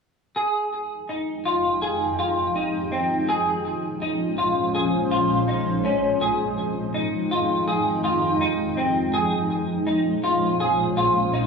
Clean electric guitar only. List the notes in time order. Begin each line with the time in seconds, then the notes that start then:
0.36 G#4
1.09 D#4
1.46 F4
1.82 G#4
2.19 F4
2.56 D#4
2.92 C4
3.29 G#4
4.02 D#4
4.38 F4
4.75 G#4
5.11 F4
5.48 D#4
5.85 C#4
6.21 G#4
6.94 D#4
7.31 F4
7.68 G#4
8.04 F4
8.41 D#4
8.77 C4
9.14 G#4
9.87 D#4
10.24 F4
10.60 G#4
10.97 F4
11.33 D#4